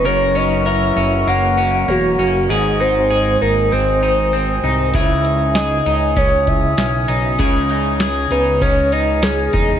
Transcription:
<<
  \new Staff \with { instrumentName = "Glockenspiel" } { \time 4/4 \key cis \dorian \tempo 4 = 98 r1 | r1 | r4 gis''2 r4 | r1 | }
  \new Staff \with { instrumentName = "Flute section" } { \time 4/4 \key cis \dorian << { <fis'' cis'''>1 | <gis'' dis'''>1~ | <gis'' dis'''>1~ | <gis'' dis'''>1 | } \\ { <ais' cis''>1 | <bis' dis''>1 | cis''1~ | cis''1 | } >> }
  \new Staff \with { instrumentName = "Soft synth lead" } { \time 4/4 \key cis \dorian cis''8 dis''8 e''4 fis''4 fis'4 | gis'8 bis'4 ais'8 bis'4. r8 | e''4 dis''4 cis''8 e''4 r8 | r4. b'8 cis''8 dis''8 gis'4 | }
  \new Staff \with { instrumentName = "Clean electric guitar" } { \time 4/4 \key cis \dorian <fis, ais'>8 cis'8 ais'8 cis'8 ais8 cis'8 ais8 cis'8 | <gis, gis'>8 dis'8 gis'8 dis'8 bis8 dis'8 bis8 dis'8 | <cis gis'>4 gis'8 dis'8 cis'4 cis'8 dis'8 | <cis gis'>8 dis'8 gis'8 dis'8 cis'8 dis'8 cis'8 dis'8 | }
  \new Staff \with { instrumentName = "Analog synth bass" } { \clef bass \time 4/4 \key cis \dorian fis,,4. fis,,8 fis,,4 e,,8 fis,,8 | gis,,4. gis,,8 gis,,4. bis,,8 | cis,4. cis,8 cis,4 b,,8 b,,8 | cis,4. cis,8 cis,4. e,,8 | }
  \new DrumStaff \with { instrumentName = "Drums" } \drummode { \time 4/4 r4 r4 r4 r4 | r4 r4 r4 r4 | <hh bd>8 hh8 <hh sn>8 hh8 <hh bd>8 <hh bd>8 <hh sn>8 hh8 | <hh bd>8 hh8 <hh sn>8 hh8 <hh bd>8 hh8 <hh sn>8 <hh bd>8 | }
>>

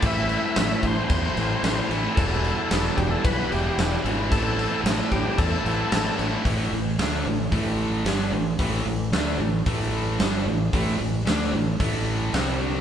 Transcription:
<<
  \new Staff \with { instrumentName = "Tonewheel organ" } { \time 4/4 \key a \minor \tempo 4 = 112 e''8. e''8. c''8 c''4. r8 | a'4. g'16 a'16 b'8 g'4 r8 | a'4 r8 g'8 a'4. r8 | r1 |
r1 | r1 | }
  \new Staff \with { instrumentName = "Overdriven electric guitar" } { \time 4/4 \key a \minor <a, e a c' e'>8. <a c' e'>16 <a, e a c' e'>8. <a c' e'>8 <a c' e'>16 <e a c' e'>8 <a, e a c' e'>8 <e a c' e'>16 <a c' e'>16 | <e, b, e g b e'>8. <e g b e'>16 <e, b, e g b e'>8. <e g b e'>8 <e g b e'>16 <e g b e'>8 <e, b, e g b e'>8 <e g b e'>16 <e g b e'>16 | <a, e a c' e'>8. <a c' e'>16 <a, e a c' e'>8. <a c' e'>8 <a c' e'>16 <e a c' e'>8 <a, e a c' e'>8 <e a c' e'>16 <a c' e'>16 | <a, e a>8 <a, e>8 <d a d'>8 <a, e>8 <a, e a>4 <g, d g>8 <a, e>8 |
<a, e a>8 <a, e>8 <d a d'>8 <a, e>8 <a, e a>4 <g, d g>8 <a, e>8 | <a, e a>8 <a, e>8 <d a d'>8 <a, e>8 <a, e a>4 <c g c'>4 | }
  \new Staff \with { instrumentName = "Distorted electric guitar" } { \clef bass \time 4/4 \key a \minor <a, e a>2.~ <a, e a>8 <a, e a>8 | <e, b, e>2.~ <e, b, e>8 <e, b, e>8 | <a, e a>2.~ <a, e a>8 <a, e a>8 | <a, e a>8 <a, e>8 <d a d'>8 <a, e>8 <a, e a>4 <g, d g>8 <a, e>8 |
<a, e a>8 <a, e>8 <d a d'>8 <a, e>8 <a, e a>4 <g, d g>8 <a, e>8 | <a, e a>8 <a, e>8 <d a d'>8 <a, e>8 <a, e a>4 <c g c'>4 | }
  \new Staff \with { instrumentName = "Fingered electric bass" } { \clef bass \time 4/4 \key a \minor a,,4 a,,8 a,,8 e,8 a,,8 a,,8 a,,8 | e,,4 e,,8 e,,8 b,,8 e,,8 e,,8 gis,,8 | a,,4 a,,8 a,,8 e,8 a,,8 a,,8 a,,8 | a,,8 a,,8 d,8 a,,8 a,,4 g,,8 a,,8 |
a,,8 a,,8 d,8 a,,8 a,,4 g,,8 a,,8 | a,,8 a,,8 d,8 a,,8 a,,4 c,4 | }
  \new DrumStaff \with { instrumentName = "Drums" } \drummode { \time 4/4 <cymc bd>8 cymc8 <cymc sn>8 <cymc bd>8 <cymc bd>8 cymc8 <cymc sn>8 cymc8 | <cymc bd>8 cymc8 <cymc sn>8 <cymc bd>8 <cymc bd>8 cymc8 <cymc sn>8 cymc8 | <cymc bd>8 cymc8 <cymc sn>8 <cymc bd>8 <cymc bd>8 cymc8 <cymc sn>8 cymc8 | <hho bd>4 <hho sn>4 <hho bd>4 <hho sn>4 |
<hho bd>4 <hho sn>4 <hho bd>4 <hho sn>4 | <hho bd>4 <hho sn>4 <hho bd>4 <hho sn>4 | }
>>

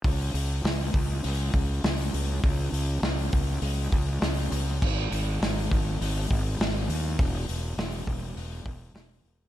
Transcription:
<<
  \new Staff \with { instrumentName = "Fingered electric bass" } { \clef bass \time 4/4 \key gis \phrygian \tempo 4 = 101 cis,8 cis,8 cis,8 cis,8 cis,8 cis,8 cis,8 cis,8 | cis,8 cis,8 cis,8 cis,8 cis,8 cis,8 cis,8 cis,8 | gis,,8 gis,,8 gis,,8 gis,,8 gis,,8 gis,,8 gis,,8 dis,8 | e,,8 e,,8 e,,8 e,,8 e,,8 e,,8 e,,8 e,,8 | }
  \new DrumStaff \with { instrumentName = "Drums" } \drummode { \time 4/4 <hho bd>8 hho8 <hho sn>8 <hho bd>8 hho8 <hho bd>8 <hho sn>8 hho8 | <hho bd>8 hho8 <hho sn>8 <hho bd>8 hho8 <hho bd>8 <hho sn>8 hho8 | <cymc bd>8 hho8 <hho sn>8 <hho bd>8 hho8 <hho bd>8 <hho sn>8 hho8 | <hho bd>8 hho8 <hho sn>8 <hho bd>8 hho8 <hho bd>8 <hho sn>8 hho8 | }
>>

